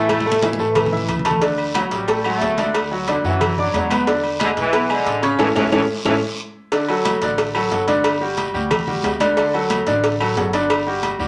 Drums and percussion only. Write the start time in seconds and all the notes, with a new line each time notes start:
0.09 cowbell, high conga, low agogo, long guiro, claves
0.20 high conga
0.32 high conga
0.42 cowbell, high conga, low agogo, short guiro
0.53 high conga
0.59 short guiro
0.75 cowbell, low conga, low agogo, long guiro, claves
0.86 low conga
0.97 low conga
1.08 cowbell, low conga, low agogo, short guiro
1.19 low conga
1.25 cowbell, low agogo, short guiro, claves
1.31 low conga
1.42 cowbell, high conga, low agogo, long guiro
1.58 high conga, low agogo
1.75 cowbell, high conga, low agogo, short guiro, claves
1.91 cowbell, high conga, short guiro
2.08 cowbell, high conga, low agogo, long guiro
2.24 high conga, low agogo, claves
2.41 cowbell, high conga, low timbale, short guiro
2.57 cowbell, high conga, low agogo, short guiro
2.74 cowbell, high conga, low agogo, long guiro, claves
2.91 high conga
3.08 cowbell, high conga, low agogo, short guiro
3.25 high conga, short guiro
3.41 cowbell, high conga, low conga, low agogo, long guiro, claves
3.58 high conga, low conga
3.74 cowbell, high conga, low timbale, low agogo, short guiro
3.90 cowbell, high conga, low agogo, short guiro, claves
4.07 cowbell, high conga, low agogo, long guiro
4.23 high conga, low agogo
4.40 cowbell, high conga, low agogo, short guiro, claves
4.57 cowbell, high conga, short guiro
4.73 cowbell, high conga, low agogo, long guiro
4.90 high conga, low agogo, claves
5.06 cowbell, high conga, short guiro
5.23 cowbell, low agogo, short guiro
5.39 cowbell, high conga, high timbale, long guiro, claves
5.55 cowbell, high conga, high timbale, long guiro, claves
5.72 cowbell, high conga, high timbale, long guiro, claves
6.05 cowbell, high conga, high timbale, long guiro, claves
6.72 cowbell, high conga, low agogo, long guiro
6.88 high conga, low agogo
7.05 cowbell, high conga, low agogo, short guiro, claves
7.22 cowbell, high conga, short guiro
7.38 cowbell, high conga, low agogo, long guiro
7.55 high conga, low agogo, claves
7.72 cowbell, high conga, short guiro
7.88 cowbell, high conga, low agogo, short guiro
8.04 cowbell, high conga, low agogo, long guiro, claves
8.21 high conga
8.37 cowbell, high conga, low agogo, short guiro
8.54 high conga, short guiro
8.71 cowbell, high conga, low conga, low agogo, long guiro, claves
8.87 high conga, low conga
9.03 cowbell, high conga, low timbale, low agogo, short guiro
9.20 cowbell, high conga, low agogo, short guiro, claves
9.37 cowbell, high conga, low agogo, long guiro
9.54 high conga, low agogo
9.70 cowbell, high conga, low agogo, short guiro, claves
9.87 cowbell, high conga, short guiro
10.04 cowbell, high conga, low agogo, long guiro
10.20 high conga, low agogo, claves
10.36 cowbell, high conga, low timbale, short guiro
10.53 cowbell, low agogo, short guiro
10.70 cowbell, high conga, low agogo, long guiro, claves
10.86 high conga
11.03 cowbell, high conga, low agogo, short guiro
11.20 high conga, short guiro